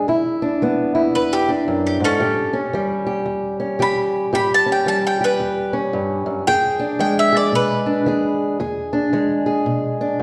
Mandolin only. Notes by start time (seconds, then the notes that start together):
1.15 B4
1.33 G4
1.87 G4
2.04 C#4 A4
3.82 B5
4.35 B5
4.54 A5
4.72 G5
4.88 A5
5.07 G5
5.24 B4 G5
6.47 G5
7.00 G5
7.19 E5
7.37 D5
7.55 B4